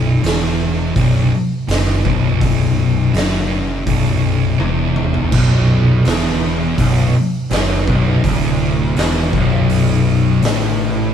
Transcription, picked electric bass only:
Already playing: B0
0.23 E1
0.96 B0
1.68 F#1
2.05 B0
3.13 F#1
3.87 B0
4.59 E1
5.32 B0
6.05 E1
6.78 B0
7.50 F#1
7.87 B0
8.24 D1
8.96 E1
9.33 B0
10.42 A1

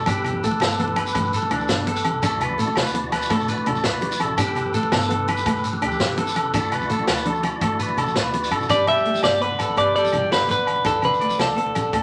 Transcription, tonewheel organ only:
0.07 G4 A4 B4
2.22 E4 F#4 D5
4.38 G4 A4 B4
6.55 E4 F#4 D5

